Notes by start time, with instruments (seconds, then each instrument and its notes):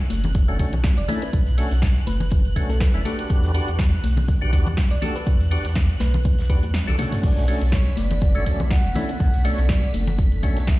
Already playing: string machine F#6
0.10 sub bass F#1, snare, closed hi-hat, open hi-hat, ride, high conga
0.24 closed hi-hat, low conga
0.35 kick, closed hi-hat
0.48 tonewheel organ A3 C#4 D4 F#4, closed hi-hat
0.59 sub bass B1, tonewheel organ A3 C#4 D4 F#4, kick, closed hi-hat, open hi-hat, ride
0.73 closed hi-hat, low conga
0.84 kick, snare, closed hi-hat
0.98 sub bass F#1, synth pluck D5, closed hi-hat
1.08 tonewheel organ A3 C#4 D4 E4, closed hi-hat, open hi-hat, ride, high conga, low conga
1.22 synth pluck B4, closed hi-hat
1.33 sub bass B1, kick, closed hi-hat
1.47 snare, closed hi-hat
1.58 tonewheel organ A3 C#4 D4 F#4, open hi-hat, ride
1.71 sub bass B1, snare, closed hi-hat
1.82 kick, snare, closed hi-hat
1.96 closed hi-hat
2.07 sub bass F#1, synth pluck B4, closed hi-hat, open hi-hat, ride, high conga
2.20 closed hi-hat, low conga
2.30 kick, closed hi-hat
2.45 closed hi-hat
2.56 sub bass B1, tonewheel organ A3 C#4 D4 F#4, kick, closed hi-hat, open hi-hat, ride
2.69 synth pluck A4, snare, closed hi-hat, high conga
2.80 synth pluck B4, kick, snare, closed hi-hat
2.94 sub bass F#1, tonewheel organ A3 C#4 D4 E4, closed hi-hat
3.05 tonewheel organ D4 F#4 G4 B4, synth pluck A4, closed hi-hat, open hi-hat, ride, high conga
3.19 closed hi-hat
3.30 sub bass E2, kick, closed hi-hat
3.43 snare, closed hi-hat
3.54 tonewheel organ D4 F#4 G4 B4, closed hi-hat, open hi-hat, ride
3.68 sub bass E2, closed hi-hat
3.79 kick, snare, closed hi-hat
3.93 closed hi-hat
4.04 sub bass B1, open hi-hat, ride, high conga
4.17 closed hi-hat, low conga
4.28 kick, closed hi-hat
4.41 tonewheel organ D4 F#4 G4 B4, closed hi-hat
4.53 sub bass E2, tonewheel organ D4 F#4 G4 B4, kick, closed hi-hat, open hi-hat, ride
4.66 closed hi-hat, low conga
4.77 kick, snare, closed hi-hat
4.91 sub bass B1, synth pluck D5, closed hi-hat
5.02 tonewheel organ D4 F#4 G4 A4, closed hi-hat, open hi-hat, ride, high conga, low conga
5.16 synth pluck B4, closed hi-hat
5.27 sub bass E2, kick, closed hi-hat
5.39 snare, closed hi-hat
5.51 tonewheel organ D4 F#4 G4 B4, open hi-hat, ride
5.65 sub bass E2, snare, closed hi-hat
5.76 kick, snare, closed hi-hat
5.89 closed hi-hat
6.00 sub bass B1, synth pluck B4, snare, closed hi-hat, open hi-hat, ride, high conga
6.14 closed hi-hat, low conga
6.25 kick, closed hi-hat
6.39 snare, closed hi-hat
6.49 sub bass E2, tonewheel organ D4 F#4 G4 B4, synth pluck B4, kick, open hi-hat, ride
6.62 closed hi-hat, high conga
6.74 snare, closed hi-hat
6.87 sub bass B1, tonewheel organ D4 F#4 G4 A4, snare, closed hi-hat, high tom
6.98 tonewheel organ A3 C#4 D4 F#4, snare, closed hi-hat, open hi-hat, mid tom, ride, high conga
7.12 snare, closed hi-hat, mid tom
7.23 sub bass B1, analog synth pad A3 B3 D4 B4 F#5, soft synth lead D5, string machine B6, kick, closed hi-hat, crash
7.37 snare, closed hi-hat
7.48 tonewheel organ A3 C#4 D4 F#4, closed hi-hat, open hi-hat, ride
7.61 sub bass B1, soft synth lead C#5, closed hi-hat
7.72 kick, snare, closed hi-hat
7.86 closed hi-hat
7.97 sub bass F#1, soft synth lead D5, snare, closed hi-hat, open hi-hat, ride, high conga
8.10 closed hi-hat, low conga
8.21 kick, closed hi-hat
8.35 tonewheel organ A3 C#4 D4 F#4, closed hi-hat
8.46 sub bass B1, tonewheel organ A3 C#4 D4 F#4, kick, closed hi-hat, open hi-hat, ride
8.60 closed hi-hat, low conga
8.71 soft synth lead F#5, kick, snare, closed hi-hat
8.84 sub bass F#1, closed hi-hat
8.95 tonewheel organ A3 C#4 D4 E4, closed hi-hat, open hi-hat, ride, high conga, low conga
9.09 closed hi-hat
9.20 sub bass B1, analog synth pad A4, soft synth lead F#5, kick, closed hi-hat
9.33 snare, closed hi-hat
9.44 tonewheel organ A3 C#4 D4 F#4, soft synth lead D5, open hi-hat, ride
9.58 sub bass B1, snare, closed hi-hat
9.69 kick, snare, closed hi-hat
9.83 closed hi-hat
9.94 sub bass F#1, closed hi-hat, open hi-hat, ride, high conga
10.07 closed hi-hat, low conga
10.19 kick, closed hi-hat
10.32 closed hi-hat
10.43 sub bass B1, tonewheel organ A3 C#4 D4 F#4, kick, closed hi-hat, open hi-hat, ride
10.57 snare, closed hi-hat, high conga
10.67 soft synth lead E5, kick, snare, closed hi-hat